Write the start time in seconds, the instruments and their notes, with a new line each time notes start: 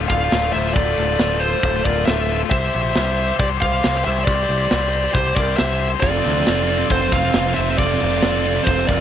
0.06 picked electric bass D1, distorted electric guitar A3 F4, lead electric guitar F5, kick, crash
0.12 distorted electric guitar A3 F4, lead electric guitar D5
0.22 distorted electric guitar A3 F4
0.29 picked electric bass D1, distorted electric guitar A3 F4, snare, crash
0.37 distorted electric guitar A3 F4
0.44 distorted electric guitar A3 F4
0.51 picked electric bass D1, distorted electric guitar A3 F4, lead electric guitar E5, crash
0.55 distorted electric guitar A3, lead electric guitar C5
0.61 distorted electric guitar F4
0.66 distorted electric guitar A3 F4
0.74 picked electric bass D1, distorted electric guitar A3 F4, lead electric guitar A4 D5, kick, crash
0.84 distorted electric guitar A3 F4
0.91 distorted electric guitar A3 F4
0.98 picked electric bass D1, distorted electric guitar A3 F4, crash
1.06 distorted electric guitar A3 F4
1.13 distorted electric guitar A3 F4
1.19 picked electric bass D1, distorted electric guitar A3 F4, snare, crash
1.29 distorted electric guitar A3 F4
1.36 distorted electric guitar A3 F4, lead electric guitar C5
1.41 distorted electric guitar A3, lead electric guitar A4, crash
1.46 distorted electric guitar F4
1.52 distorted electric guitar A3 F4
1.60 distorted electric guitar A3 F4, kick
1.64 picked electric bass D1, distorted electric guitar A3, crash
1.69 distorted electric guitar F4
1.75 distorted electric guitar A3 F4
1.81 picked electric bass D1, distorted electric guitar A3 F4, lead electric guitar D5
1.85 lead electric guitar A#4, kick, crash
1.90 distorted electric guitar A3 F4
1.97 distorted electric guitar A3 F4
2.05 picked electric bass D1, distorted electric guitar A3 F4, lead electric guitar A4 E5, snare, crash
2.13 distorted electric guitar A3 F4
2.21 distorted electric guitar A3 F4
2.27 distorted electric guitar A3 F4, crash
2.36 distorted electric guitar A3 F4
2.44 distorted electric guitar A3 F4
2.50 picked electric bass C2, distorted electric guitar G4 C5, lead electric guitar C5 E5, kick, crash
2.59 distorted electric guitar G4 C5
2.65 distorted electric guitar G4 C5
2.73 picked electric bass A#1, distorted electric guitar G4 C5, crash
2.81 distorted electric guitar G4 C5
2.89 distorted electric guitar G4 C5
2.95 picked electric bass C2, distorted electric guitar G4 C5, snare, crash
3.05 distorted electric guitar G4 C5
3.12 distorted electric guitar G4 C5
3.17 distorted electric guitar G4 C5, crash
3.27 distorted electric guitar G4 C5
3.35 distorted electric guitar G4 C5
3.39 picked electric bass C2, lead electric guitar G4 D5, distorted electric guitar G4, kick, crash
3.44 distorted electric guitar C5
3.50 distorted electric guitar G4 C5
3.57 distorted electric guitar G4 C5, lead electric guitar F5
3.62 picked electric bass C2, distorted electric guitar G4 C5, lead electric guitar C5, kick, crash
3.73 distorted electric guitar G4 C5
3.80 distorted electric guitar G4 C5, snare, crash
3.86 picked electric bass C2, distorted electric guitar G4 C5
3.96 distorted electric guitar G4 C5
4.03 picked electric bass C2, distorted electric guitar G4 C5, lead electric guitar C5 E5, crash
4.11 distorted electric guitar G4 C5
4.19 distorted electric guitar G4 C5
4.25 picked electric bass C2, lead electric guitar G4 D5, distorted electric guitar G4 C5, kick, crash
4.35 distorted electric guitar G4 C5
4.42 distorted electric guitar G4 C5
4.49 picked electric bass C2, distorted electric guitar G4 C5, crash
4.58 distorted electric guitar G4 C5
4.65 distorted electric guitar G4 C5
4.71 picked electric bass C2, distorted electric guitar G4 C5, snare, crash
4.81 distorted electric guitar G4 C5
4.88 distorted electric guitar G4 C5
4.93 distorted electric guitar G4 C5, crash
5.04 distorted electric guitar G4 C5
5.11 picked electric bass C2, distorted electric guitar G4 C5, lead electric guitar C5, kick, crash
5.17 lead electric guitar G4, distorted electric guitar G4 C5
5.27 distorted electric guitar G4 C5
5.33 picked electric bass C2, distorted electric guitar G4 C5, lead electric guitar D5, kick, crash
5.39 distorted electric guitar G4, lead electric guitar A#4
5.43 distorted electric guitar C5
5.49 distorted electric guitar G4 C5
5.57 picked electric bass C2, distorted electric guitar G4 C5, lead electric guitar C5 E5, snare, crash
5.65 distorted electric guitar G4 C5
5.72 distorted electric guitar G4 C5
5.79 distorted electric guitar G4 C5, crash
5.88 distorted electric guitar G4 C5
5.95 distorted electric guitar G4 C5
6.00 picked electric bass F1, distorted electric guitar F2 C3 C4 F4, lead electric guitar A4 D5, kick, crash
6.10 distorted electric guitar F2 C3 C4 F4
6.18 distorted electric guitar F2 C3 C4 F4
6.24 picked electric bass D2, distorted electric guitar F2 C3 C4 F4, crash
6.33 distorted electric guitar F2 C3 C4 F4
6.40 distorted electric guitar F2 C3 C4 F4
6.47 picked electric bass F1, distorted electric guitar F2 C3 C4 F4, snare, crash
6.55 distorted electric guitar F2 C3 C4 F4
6.62 distorted electric guitar F2 C3 C4 F4
6.68 distorted electric guitar F2 C3 C4 F4, crash
6.77 distorted electric guitar F2 C3 C4 F4
6.85 distorted electric guitar F2 C3 C4 F4
6.90 picked electric bass F1, distorted electric guitar C4, lead electric guitar A4 C5, kick, crash
6.94 distorted electric guitar F2 C3 F4
7.00 distorted electric guitar F2 C3 C4 F4
7.08 distorted electric guitar F2 C3 C4 F4, crash
7.12 picked electric bass F1, distorted electric guitar F2, lead electric guitar C5 F5, kick
7.17 distorted electric guitar C3 C4 F4
7.23 distorted electric guitar F2 C3 C4 F4
7.30 distorted electric guitar F2 C3 C4 F4, snare, crash
7.35 picked electric bass F1, distorted electric guitar F2 C4 F4
7.40 distorted electric guitar C3
7.46 distorted electric guitar F2 C3 C4 F4
7.53 distorted electric guitar F2 C3 C4 F4, lead electric guitar E5, crash
7.58 picked electric bass F1, distorted electric guitar C3 C4 F4, lead electric guitar C5
7.62 distorted electric guitar F2
7.69 distorted electric guitar F2 C3 C4 F4
7.77 picked electric bass F1, distorted electric guitar F2 C3 C4 F4, lead electric guitar A4 D5, kick, crash
7.85 distorted electric guitar F2 C3 C4 F4
7.93 distorted electric guitar F2 C3 C4 F4
8.00 picked electric bass F1, distorted electric guitar F2 C3 C4 F4, crash
8.08 distorted electric guitar F2 C3 C4 F4
8.16 distorted electric guitar F2 C3 C4 F4
8.22 picked electric bass F1, distorted electric guitar F2 C3 C4 F4, snare, crash
8.32 distorted electric guitar F2 C3 C4 F4
8.39 distorted electric guitar F2 C3 C4 F4
8.45 distorted electric guitar F2 C3 C4 F4, crash
8.54 distorted electric guitar F2 C3 C4 F4
8.62 distorted electric guitar F2 C3 C4 F4, lead electric guitar A4 C5
8.67 picked electric bass F1, distorted electric guitar C3 C4 F4, kick, crash
8.71 distorted electric guitar F2
8.78 distorted electric guitar F2 C3 C4 F4
8.85 distorted electric guitar F2 C3 C4 F4, lead electric guitar A#4 D5, kick, crash
8.89 picked electric bass F1, distorted electric guitar C4 F4
8.94 distorted electric guitar F2 C3